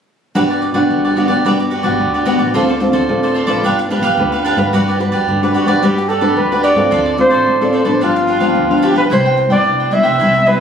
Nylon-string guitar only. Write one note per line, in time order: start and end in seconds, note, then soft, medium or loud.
0.35 0.87 G3 soft
0.35 0.72 B3 soft
0.35 0.72 D4 soft
0.35 0.72 F#4 medium
0.74 1.12 B3 medium
0.74 1.12 D4 medium
0.74 1.12 F#4 medium
0.91 1.42 D3 soft
1.17 1.33 B3 soft
1.17 1.33 D4 soft
1.17 1.34 F#4 medium
1.45 1.97 G3 soft
1.45 1.71 B3 soft
1.45 1.71 D4 soft
1.45 1.71 F#4 soft
1.84 2.22 B3 medium
1.84 2.22 D4 medium
1.84 2.22 F#4 medium
2.00 2.52 D3 soft
2.26 2.49 B3 medium
2.26 2.50 D4 soft
2.26 2.50 F#4 medium
2.55 3.06 D3 soft
2.55 2.71 C4 medium
2.55 2.71 F4 soft
2.55 2.71 A4 soft
2.81 3.04 C4 soft
2.81 3.04 F4 soft
2.81 3.05 A4 soft
3.09 3.61 A2 soft
3.09 3.46 C4 medium
3.09 3.46 F4 soft
3.09 3.46 A4 medium
3.48 3.86 D4 soft
3.48 3.86 F4 medium
3.48 3.86 B4 medium
3.64 4.16 G3 soft
3.91 4.07 D4 soft
3.91 4.07 F4 soft
3.91 4.07 B4 medium
4.19 4.71 D3 soft
4.19 4.55 D4 soft
4.19 4.56 F4 soft
4.19 4.56 B4 soft
4.58 4.95 D4 medium
4.58 4.96 F#4 medium
4.58 4.96 B4 medium
4.74 5.25 G3 soft
4.99 5.26 D4 soft
4.99 5.26 F#4 soft
4.99 5.26 B4 medium
5.28 5.80 D3 soft
5.42 5.65 D4 medium
5.42 5.65 F#4 soft
5.42 5.65 B4 medium
5.67 5.77 D4 soft
5.67 5.78 F#4 soft
5.67 5.78 B4 medium
5.83 6.35 G3 soft
5.83 6.08 D4 soft
5.83 6.09 F#4 soft
5.83 6.09 B4 medium
6.21 6.45 D4 medium
6.21 6.46 F#4 medium
6.21 6.46 B4 medium
6.37 6.89 D3 soft
6.52 6.74 D4 soft
6.52 6.74 F#4 medium
6.52 6.75 B4 medium
6.76 7.14 C4 medium
6.76 7.14 F4 medium
6.76 7.14 A4 medium
6.92 7.44 D3 soft
7.18 7.56 C4 soft
7.18 7.56 F4 soft
7.18 7.56 A4 soft
7.46 7.98 A2 soft
7.61 7.84 C4 medium
7.61 7.84 F4 medium
7.61 7.84 A4 medium
7.85 8.37 F3 soft
7.85 8.37 B3 soft
7.85 8.37 D4 medium
8.02 8.54 G2 soft
8.40 8.64 F3 medium
8.40 8.64 B3 medium
8.40 8.65 D4 medium
8.55 9.08 D3 medium
8.70 9.07 F3 medium
8.70 9.07 B3 medium
8.70 9.07 D4 medium
9.10 9.63 C3 medium
9.10 9.48 G3 medium
9.10 9.48 E4 medium
9.50 9.88 G3 medium
9.50 9.88 B3 medium
9.50 9.88 E4 medium
9.66 10.18 G2 soft
9.92 10.16 G3 soft
9.92 10.16 B3 soft
9.92 10.16 E4 medium
10.21 10.60 C3 medium
10.21 10.37 G3 medium
10.21 10.37 B3 medium
10.21 10.38 E4 medium
10.47 10.60 G3 soft
10.47 10.60 B3 soft
10.47 10.60 E4 medium